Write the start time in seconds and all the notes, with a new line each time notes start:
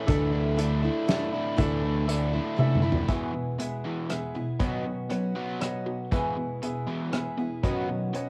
0.07 D2 D3 E3 A3 D4 E4 A4 D5 E5, kick, closed hi-hat
0.32 A3 D4 E4
0.57 D3 E3 A3 D4 E4 A4 D5 E5, closed hi-hat
0.83 A3 D4 E4 A4
1.07 E3 A3 E4 A4 D5 E5, snare, closed hi-hat
1.32 A3 D4 E4
1.56 D2 D3 E3 A3 D4 E4 A4 D5 E5, kick, closed hi-hat
1.60 E4
1.83 A3 D4 E4
2.08 D3 E3 A3 D4 E4 A4 D5 E5, closed hi-hat
2.33 A3 D4 E4 A4
2.56 E3 A3 E4 A4 D5 E5, high tom
2.76 mid tom
2.82 A3 D4 E4 A4
2.92 floor tom
3.08 E2 B2 E3 G#3 B3 E4 G#4 B4 E5, kick, closed hi-hat
3.33 E2 B2
3.58 E2 B2 G#3 B3 E4 G#4 B4 E5, closed hi-hat
3.84 E2 B2 E3
4.09 E2 B2 G#3 B3 E4 G#4 B4 E5, cross-stick, closed hi-hat
4.34 E2 B2 B3 E4 G#4
4.59 B2 D#3 F#3 B3 C#4 F#4 B4 C#5 D#5, kick, closed hi-hat
4.85 B2 F#3
5.10 B2 F#3 B3 C#4 F#4 B4 C#5 F#5, closed hi-hat
5.35 B2 F#3 B3
5.60 B2 F#3 B3 C#4 F#4 B4 C#5 D#5, cross-stick, closed hi-hat
5.86 B2 F#3
6.12 E2 B2 E3 G#3 B3 E4 G#4 B4 E5, kick, closed hi-hat
6.37 E2 B2
6.62 E2 B2 G#3 B3 E4 G#4 B4 E5, closed hi-hat
6.87 E2 B2 E3 B3 E4 G#4
7.12 E2 B2 G#3 B3 E4 G#4 B4 E5, cross-stick, closed hi-hat
7.16 G#4
7.38 E2 B2 B3 E4 G#4
7.63 B2 D#3 F#3 B3 C#4 F#4 B4 C#5 D#5, kick, closed hi-hat
7.88 B2 F#3
8.13 B2 F#3 B3 C#4 F#4 B4 C#5 D#5, closed hi-hat